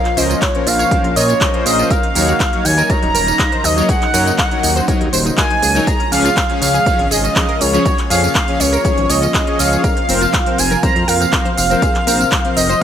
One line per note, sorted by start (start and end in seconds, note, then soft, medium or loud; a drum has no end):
0.00 1.87 A#2 medium
0.00 1.87 F3 medium
0.00 5.83 A#3 medium
0.00 1.87 C#4 medium
0.00 0.19 F5 loud
0.05 0.14 F4 medium
0.05 clap soft
0.05 closed hi-hat soft
0.17 0.35 C#2 medium
0.17 0.27 F3 loud
0.17 0.27 C#4 medium
0.17 0.27 A#4 medium
0.17 0.26 C5 medium
0.17 0.27 C5 loud
0.17 0.43 D#5 loud
0.17 open hi-hat loud
0.17 tambourine medium
0.30 0.39 F4 medium
0.30 closed hi-hat soft
0.30 tambourine soft
0.42 0.51 F4 medium
0.42 0.68 C#5 loud
0.42 kick loud
0.42 clap loud
0.42 closed hi-hat medium
0.42 tambourine soft
0.55 0.70 F3 medium
0.55 0.70 C#4 medium
0.55 0.70 A#4 medium
0.55 0.70 C5 medium
0.55 closed hi-hat soft
0.67 0.84 A#1 loud
0.67 0.76 F4 medium
0.67 1.16 F5 loud
0.67 open hi-hat loud
0.67 tambourine medium
0.79 0.88 C#5 loud
0.79 closed hi-hat soft
0.79 tambourine soft
0.91 1.07 F3 medium
0.91 1.07 C#4 medium
0.91 1.01 F4 medium
0.91 1.07 A#4 medium
0.91 1.07 C5 loud
0.91 kick loud
0.91 closed hi-hat medium
1.04 1.13 A#1 loud
1.04 1.13 F4 medium
1.04 closed hi-hat soft
1.16 1.34 A#2 medium
1.16 1.62 C#5 loud
1.16 1.26 D#5 medium
1.16 open hi-hat loud
1.16 tambourine medium
1.29 1.38 F4 medium
1.29 closed hi-hat soft
1.29 tambourine soft
1.41 1.51 F3 medium
1.41 1.51 C#4 medium
1.41 1.50 F4 medium
1.41 1.51 A#4 medium
1.41 1.51 D#5 medium
1.41 kick loud
1.41 clap loud
1.41 closed hi-hat medium
1.41 tambourine soft
1.54 1.75 F3 loud
1.54 1.75 C#4 medium
1.54 1.63 F4 medium
1.54 1.75 A#4 medium
1.54 1.75 C5 loud
1.54 closed hi-hat soft
1.66 1.84 A#1 loud
1.66 1.92 D#5 medium
1.66 1.75 F5 medium
1.66 open hi-hat loud
1.66 tambourine medium
1.78 1.88 F3 medium
1.78 1.88 C#4 medium
1.78 1.87 F4 medium
1.78 1.88 A#4 medium
1.78 1.88 C5 medium
1.78 closed hi-hat soft
1.78 tambourine soft
1.90 9.80 C#3 medium
1.90 5.83 F#3 medium
1.90 5.83 D#4 medium
1.90 2.00 A#4 loud
1.90 2.66 F5 loud
1.90 kick loud
1.90 closed hi-hat medium
1.90 tambourine soft
2.03 2.12 D#4 medium
2.03 closed hi-hat soft
2.15 2.33 D#2 loud
2.15 2.25 F#3 medium
2.15 2.25 D#4 medium
2.15 2.25 A#4 medium
2.15 2.25 C#5 loud
2.15 open hi-hat loud
2.15 tambourine medium
2.28 2.37 F#4 medium
2.28 closed hi-hat soft
2.28 tambourine soft
2.40 2.50 D#4 medium
2.40 kick loud
2.40 clap loud
2.40 closed hi-hat medium
2.40 tambourine soft
2.53 2.68 F#3 medium
2.53 2.62 D#4 medium
2.53 2.68 D#4 medium
2.53 2.68 A#4 medium
2.53 2.68 C#5 medium
2.53 closed hi-hat soft
2.65 2.83 D#2 medium
2.65 2.74 D#4 medium
2.65 2.91 G#5 loud
2.65 open hi-hat loud
2.65 tambourine medium
2.78 2.87 A#4 medium
2.78 closed hi-hat soft
2.78 tambourine soft
2.90 3.05 F#3 loud
2.90 3.05 D#4 medium
2.90 2.99 D#4 medium
2.90 3.05 A#4 medium
2.90 3.05 C#5 loud
2.90 3.66 A#5 loud
2.90 kick loud
2.90 closed hi-hat medium
2.90 tambourine soft
3.02 3.11 D#1 loud
3.02 3.11 D#4 medium
3.02 closed hi-hat soft
3.14 3.32 D#1 medium
3.14 3.24 A#4 loud
3.14 open hi-hat loud
3.14 tambourine medium
3.27 3.36 D#4 medium
3.27 closed hi-hat soft
3.27 tambourine soft
3.39 3.49 F#3 medium
3.39 3.49 D#4 medium
3.39 3.49 A#4 medium
3.39 3.49 F5 loud
3.39 kick loud
3.39 clap loud
3.39 closed hi-hat medium
3.52 3.61 C5 medium
3.52 closed hi-hat soft
3.64 3.82 D#2 loud
3.64 3.74 D#4 medium
3.64 3.88 D#5 loud
3.64 3.88 D#5 medium
3.64 open hi-hat loud
3.64 tambourine medium
3.77 3.92 F#3 medium
3.77 3.86 D#4 medium
3.77 3.92 D#4 medium
3.77 3.92 A#4 medium
3.77 3.92 C#5 loud
3.77 closed hi-hat soft
3.77 tambourine soft
3.89 3.98 G#4 medium
3.89 4.35 F#5 loud
3.89 kick loud
3.89 closed hi-hat medium
3.89 tambourine soft
4.02 4.11 D#4 medium
4.02 clap soft
4.02 closed hi-hat soft
4.14 4.32 F#2 medium
4.14 4.24 F#3 loud
4.14 4.24 D#4 medium
4.14 4.23 A#4 medium
4.14 4.24 A#4 medium
4.14 4.24 C#5 loud
4.14 open hi-hat loud
4.14 tambourine medium
4.26 4.35 D#4 medium
4.26 closed hi-hat soft
4.26 tambourine soft
4.38 4.48 D#4 medium
4.38 4.85 F#5 medium
4.38 kick loud
4.38 clap loud
4.38 closed hi-hat medium
4.38 tambourine soft
4.51 4.66 F#3 medium
4.51 4.66 D#4 medium
4.51 4.66 A#4 medium
4.51 4.66 C#5 medium
4.51 closed hi-hat soft
4.63 4.81 D#2 medium
4.63 4.73 D#4 medium
4.63 open hi-hat loud
4.63 tambourine medium
4.76 4.85 C5 medium
4.76 closed hi-hat soft
4.76 tambourine soft
4.88 5.04 F#3 medium
4.88 4.97 D#4 medium
4.88 5.04 D#4 medium
4.88 5.04 A#4 medium
4.88 5.04 C#5 loud
4.88 kick loud
4.88 closed hi-hat medium
4.88 tambourine soft
5.01 5.09 D#2 loud
5.01 5.10 D#4 medium
5.01 closed hi-hat soft
5.13 5.31 D#1 medium
5.13 5.22 C5 loud
5.13 open hi-hat loud
5.13 tambourine medium
5.26 5.35 D#4 medium
5.26 closed hi-hat soft
5.26 tambourine soft
5.38 5.48 F#3 medium
5.38 5.47 D#4 medium
5.38 5.48 D#4 medium
5.38 5.48 A#4 medium
5.38 5.48 F5 loud
5.38 5.89 G#5 loud
5.38 kick loud
5.38 clap loud
5.38 closed hi-hat medium
5.38 tambourine soft
5.50 5.59 D#4 medium
5.50 closed hi-hat soft
5.62 5.80 C#2 medium
5.62 5.72 G#4 medium
5.62 open hi-hat loud
5.62 tambourine medium
5.75 5.86 F#3 medium
5.75 5.84 D#4 medium
5.75 5.86 D#4 medium
5.75 5.86 A#4 medium
5.75 5.86 C#5 loud
5.75 closed hi-hat soft
5.75 tambourine soft
5.87 12.83 F3 medium
5.87 7.84 G#3 medium
5.87 12.83 F4 medium
5.87 5.97 G#4 medium
5.87 6.11 A#5 loud
5.87 kick loud
5.87 closed hi-hat medium
5.87 tambourine soft
6.00 6.09 C#4 medium
6.00 closed hi-hat soft
6.12 6.30 C#2 loud
6.12 6.22 F3 medium
6.12 6.21 C#4 medium
6.12 6.22 C#4 medium
6.12 6.22 G#4 medium
6.12 6.22 C#5 loud
6.12 6.58 F5 loud
6.12 open hi-hat loud
6.12 tambourine medium
6.25 6.34 F4 medium
6.25 closed hi-hat soft
6.25 tambourine soft
6.37 6.46 C#4 medium
6.37 kick loud
6.37 clap loud
6.37 closed hi-hat medium
6.37 tambourine soft
6.49 6.65 F3 medium
6.49 6.65 C#4 medium
6.49 6.59 C#4 medium
6.49 6.65 G#4 medium
6.49 6.65 C#5 medium
6.49 closed hi-hat soft
6.61 6.79 C#2 medium
6.61 6.71 C#4 medium
6.61 7.13 F5 loud
6.61 7.13 F5 medium
6.61 open hi-hat loud
6.61 tambourine medium
6.74 6.83 G#4 medium
6.74 closed hi-hat soft
6.74 tambourine soft
6.86 7.02 F3 medium
6.86 6.96 C#4 medium
6.86 7.02 C#4 medium
6.86 7.02 G#4 medium
6.86 7.02 C#5 loud
6.86 kick loud
6.86 closed hi-hat medium
6.86 tambourine soft
6.99 7.08 G#1 loud
6.99 7.08 C#4 medium
6.99 closed hi-hat soft
7.11 7.29 G#1 medium
7.11 7.21 G#4 medium
7.11 7.62 D#5 medium
7.11 open hi-hat loud
7.11 tambourine medium
7.24 7.33 C#4 medium
7.24 closed hi-hat soft
7.24 tambourine soft
7.36 7.46 F3 medium
7.36 7.45 C#4 medium
7.36 7.46 C#4 medium
7.36 7.46 G#4 medium
7.36 7.46 F5 loud
7.36 kick loud
7.36 clap loud
7.36 closed hi-hat medium
7.36 tambourine soft
7.49 7.58 A#4 loud
7.49 closed hi-hat soft
7.61 7.79 C#2 medium
7.61 7.70 C#4 medium
7.61 7.85 C#5 medium
7.61 open hi-hat loud
7.61 tambourine medium
7.73 7.89 F3 medium
7.73 7.82 C#4 medium
7.73 7.89 C#4 medium
7.73 7.89 G#4 medium
7.73 7.89 C#5 loud
7.73 closed hi-hat soft
7.73 tambourine soft
7.85 9.82 A#3 medium
7.85 7.95 F#4 medium
7.85 7.97 C#5 medium
7.85 kick loud
7.85 closed hi-hat medium
7.85 tambourine soft
7.98 8.07 C#4 medium
7.98 clap soft
7.98 closed hi-hat soft
8.10 8.28 F2 medium
8.10 8.20 F3 medium
8.10 8.20 C#4 medium
8.10 8.20 G#4 loud
8.10 8.20 G#4 medium
8.10 8.20 C#5 loud
8.10 8.33 F5 medium
8.10 open hi-hat loud
8.10 tambourine medium
8.23 8.32 C#4 medium
8.23 closed hi-hat soft
8.23 tambourine soft
8.35 8.45 C#4 medium
8.35 8.61 F5 medium
8.35 8.62 F5 loud
8.35 kick loud
8.35 clap loud
8.35 closed hi-hat medium
8.35 tambourine soft
8.48 8.63 F3 medium
8.48 8.63 C#4 medium
8.48 8.63 G#4 medium
8.48 8.63 C#5 medium
8.48 closed hi-hat soft
8.60 8.78 C#2 loud
8.60 8.69 C#4 medium
8.60 9.11 C#5 loud
8.60 open hi-hat loud
8.60 tambourine medium
8.73 8.82 A#4 medium
8.73 closed hi-hat soft
8.73 tambourine soft
8.85 9.00 F3 medium
8.85 8.94 C#4 medium
8.85 9.00 C#4 medium
8.85 9.00 G#4 medium
8.85 9.00 C#5 loud
8.85 kick loud
8.85 closed hi-hat medium
8.85 tambourine soft
8.97 9.06 G#1 loud
8.97 9.06 C#4 medium
8.97 closed hi-hat soft
9.09 9.27 C#2 loud
9.09 9.19 C#5 loud
9.09 9.60 D#5 loud
9.09 9.61 D#5 loud
9.09 open hi-hat loud
9.09 tambourine medium
9.22 9.31 C#4 medium
9.22 closed hi-hat soft
9.22 tambourine soft
9.34 9.44 F3 medium
9.34 9.44 C#4 medium
9.34 9.44 G#4 medium
9.34 9.44 F5 medium
9.34 kick loud
9.34 clap loud
9.34 closed hi-hat medium
9.34 tambourine soft
9.47 9.69 F3 loud
9.47 9.56 C#4 medium
9.47 9.69 C#4 medium
9.47 9.69 G#4 medium
9.47 9.69 C#5 loud
9.47 closed hi-hat soft
9.59 9.77 C#2 loud
9.59 9.69 D#5 medium
9.59 10.60 F5 loud
9.59 open hi-hat loud
9.59 tambourine medium
9.72 9.81 F3 medium
9.72 9.81 C#4 medium
9.72 9.81 G#4 medium
9.72 9.81 C#5 medium
9.72 closed hi-hat soft
9.72 tambourine soft
9.84 12.83 C3 medium
9.84 12.83 F3 medium
9.84 12.83 A#3 medium
9.84 9.93 A#4 medium
9.84 12.83 F6 medium
9.84 kick loud
9.84 closed hi-hat medium
9.84 tambourine soft
9.97 10.06 C4 medium
9.97 closed hi-hat soft
10.09 10.27 F1 loud
10.09 10.19 F3 medium
10.09 10.18 C4 medium
10.09 10.19 C4 medium
10.09 10.19 A#4 medium
10.09 10.19 C5 loud
10.09 open hi-hat loud
10.09 tambourine medium
10.09 high conga loud
10.21 10.30 F4 medium
10.21 closed hi-hat soft
10.21 tambourine soft
10.33 10.43 C4 medium
10.33 kick loud
10.33 clap loud
10.33 closed hi-hat medium
10.33 tambourine soft
10.46 10.61 F3 medium
10.46 10.55 C4 medium
10.46 10.61 C4 medium
10.46 10.61 A#4 medium
10.46 10.61 C5 medium
10.46 closed hi-hat soft
10.46 low conga medium
10.58 10.76 F1 loud
10.58 10.68 C4 medium
10.58 10.82 G#5 loud
10.58 10.82 G#5 medium
10.58 open hi-hat loud
10.58 tambourine medium
10.71 10.80 A#4 medium
10.71 closed hi-hat soft
10.71 tambourine soft
10.71 high conga medium
10.71 low conga medium
10.83 10.99 F3 medium
10.83 10.93 C4 medium
10.83 10.99 C4 medium
10.83 10.99 A#4 medium
10.83 10.99 C5 loud
10.83 11.09 A#5 loud
10.83 kick loud
10.83 closed hi-hat medium
10.83 tambourine soft
10.96 11.04 F2 loud
10.96 11.05 C4 medium
10.96 closed hi-hat soft
11.08 11.26 F2 medium
11.08 11.17 A#4 loud
11.08 11.57 F5 loud
11.08 open hi-hat loud
11.08 tambourine medium
11.21 11.30 C4 medium
11.21 closed hi-hat soft
11.21 tambourine soft
11.33 11.43 F3 medium
11.33 11.43 C4 medium
11.33 11.42 C4 medium
11.33 11.43 A#4 medium
11.33 11.43 F5 loud
11.33 kick loud
11.33 clap loud
11.33 closed hi-hat medium
11.33 tambourine soft
11.45 11.54 C5 medium
11.45 closed hi-hat soft
11.45 high conga loud
11.45 low conga medium
11.57 11.75 F1 loud
11.57 11.67 C4 medium
11.57 12.53 F5 loud
11.57 open hi-hat loud
11.57 tambourine medium
11.70 11.85 F3 medium
11.70 11.79 C4 medium
11.70 11.85 C4 medium
11.70 11.85 A#4 medium
11.70 11.85 C5 loud
11.70 closed hi-hat soft
11.70 tambourine soft
11.82 11.92 G#4 medium
11.82 kick loud
11.82 closed hi-hat medium
11.82 tambourine soft
11.95 12.04 C4 medium
11.95 clap soft
11.95 closed hi-hat soft
12.07 12.25 A#1 medium
12.07 12.17 F3 medium
12.07 12.17 C4 medium
12.07 12.17 A#4 medium
12.07 12.17 C5 loud
12.07 open hi-hat loud
12.07 tambourine medium
12.07 high conga loud
12.20 12.29 C4 medium
12.20 closed hi-hat soft
12.20 tambourine soft
12.32 12.41 C4 medium
12.32 kick loud
12.32 clap loud
12.32 closed hi-hat medium
12.45 12.60 F3 medium
12.45 12.60 C4 medium
12.45 12.60 A#4 medium
12.45 12.60 C5 loud
12.45 closed hi-hat soft
12.45 low conga medium
12.56 12.74 F1 medium
12.56 12.66 C4 medium
12.56 12.80 D#5 loud
12.56 open hi-hat loud
12.56 tambourine medium
12.69 12.78 C5 medium
12.69 closed hi-hat soft
12.69 tambourine soft
12.69 high conga medium
12.69 low conga loud